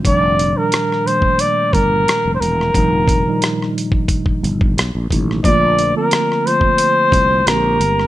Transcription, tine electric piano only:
X:1
M:4/4
L:1/16
Q:"Swing 16ths" 1/4=89
K:Fmix
V:1 name="Tine electric piano" clef=bass
[B,,E,F,G,D]3 [B,,E,F,G,D]3 [B,,E,F,G,A,B,]6- [B,,E,F,G,A,B,] z3 | [B,,E,F,G,E]3 [B,,E,F,G,E]6- [B,,E,F,G,E] z4 [=B,,^D,^F,^A,^D]2 | [D,F,A,B,F]3 [D,F,B,C]3 [D,F,A,B,F]6 [D,_A,B,C^FG]4 |]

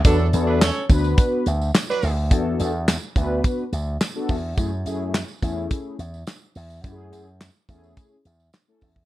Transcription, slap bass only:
X:1
M:4/4
L:1/16
Q:1/4=106
K:Emix
V:1 name="Slap bass" clef=bass
E,,2 E,,3 z D,,2 z2 D,,2 z2 D,,2 | E,,2 E,,3 z D,,2 z2 D,,2 z2 E,,2 | F,,2 F,,3 z E,,2 z2 E,,2 z2 E,,2 | F,,2 F,,3 z E,,2 z2 E,,2 z2 E,,2 |]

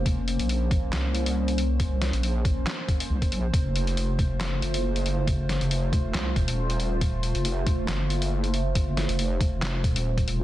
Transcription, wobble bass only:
X:1
M:4/4
L:1/16
Q:"Swing 16ths" 1/4=138
K:Fphr
V:1 name="Wobble bass" clef=bass
F,,,3 B,,,4- B,,, C,,8- | C,,3 B,,,4- B,,, z4 C,, z B,,,2 | F,,,8- F,,,2 G,,,6- | G,,,3 F,,,4- F,,, C,,2 E,,,6- |
E,,,3 F,,,4- F,,, G,,,8- | G,,,3 F,,,6- F,,, E,,,6 |]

